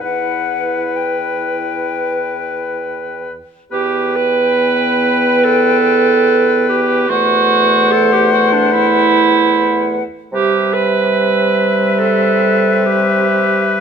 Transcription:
<<
  \new Staff \with { instrumentName = "Flute" } { \time 4/4 \key e \minor \tempo 4 = 71 fis''4 g''2~ g''8 r8 | g''1 | fis''2.~ fis''8 r8 | e''1 | }
  \new Staff \with { instrumentName = "Oboe" } { \time 4/4 \key e \minor b'2.~ b'8 r8 | b'1 | c''2.~ c''8 r8 | b'1 | }
  \new Staff \with { instrumentName = "Clarinet" } { \time 4/4 \key e \minor e'2.~ e'8 r8 | g'8 b'4. a'4. g'8 | fis'4 a'16 g'16 fis'16 d'16 e'4.~ e'16 r16 | g'8 b'4. a'4 g'4 | }
  \new Staff \with { instrumentName = "French horn" } { \time 4/4 \key e \minor b'2.~ b'8 r8 | b1 | a2.~ a8 r8 | g1 | }
  \new Staff \with { instrumentName = "Bassoon" } { \clef bass \time 4/4 \key e \minor e,2.~ e,8 r8 | e,1 | e,2.~ e,8 r8 | c1 | }
>>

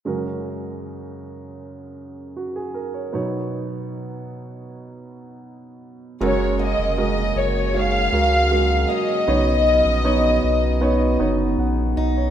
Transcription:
<<
  \new Staff \with { instrumentName = "Violin section" } { \time 4/4 \key fis \major \tempo 4 = 78 r1 | r1 | cis''8 dis''8 dis''8 cis''8 eis''4. dis''8~ | dis''2~ dis''8 r4. | }
  \new Staff \with { instrumentName = "Upright piano" } { \time 4/4 \key fis \major << { r2. fis'16 gis'16 ais'16 cis''16~ | cis''16 r2. r8. | r1 | r2. fis''8 dis''16 cis''16 | } \\ { <gis fis' ais'>1 | <b dis' cis''>1 | <gis fis' ais'>4 <gis fis' ais'>4 <gis fis' cis''>8 <gis fis' ais'>8 <gis fis' ais'>4 | <b dis' cis''>4 <b dis' cis''>4 <b dis' cis''>8 <b dis' cis''>8 r4 | } >> }
  \new Staff \with { instrumentName = "Upright piano" } { \clef bass \time 4/4 \key fis \major <fis, cis>1 | <b, fis>1 | cis4. r2 r8 | <cis fis>4. r2 r8 | }
  \new Staff \with { instrumentName = "Steel-string acoustic guitar" } { \time 4/4 \key fis \major r1 | r1 | fis,8 ais2. cis'8 | r8 cis'2. dis'8 | }
  \new Staff \with { instrumentName = "French horn section" } { \time 4/4 \key fis \major << { r1 | r1 | <cis fis fis'>1~ | <cis fis fis'>1 | } \\ { r1 | r1 | <gis ais>1 | <b dis'>1 | } >> }
  \new Staff \with { instrumentName = "Sub bass" } { \clef bass \time 4/4 \key fis \major r1 | r1 | fis,,8. eis,,8. fis,,4 cis,4 r8 | b,,8. ais,,8. b,,4 fis,,8 ais,,8 b,,8 | }
>>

